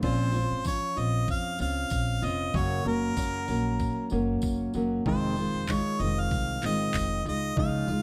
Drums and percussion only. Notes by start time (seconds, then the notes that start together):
0.03 kick, crash
0.32 tambourine
0.65 kick, tambourine
0.97 tambourine
1.28 kick, tambourine
1.59 tambourine
1.90 kick, tambourine
2.23 tambourine
2.54 kick, tambourine
3.17 kick, tambourine
3.48 tambourine
3.79 kick, tambourine
4.10 tambourine
4.42 kick, tambourine
4.74 tambourine
5.06 kick
5.36 tambourine
5.68 kick, clap, tambourine
6.00 tambourine
6.31 kick, tambourine
6.62 clap, tambourine
6.94 kick, clap, tambourine
7.26 tambourine
7.57 kick
7.88 tambourine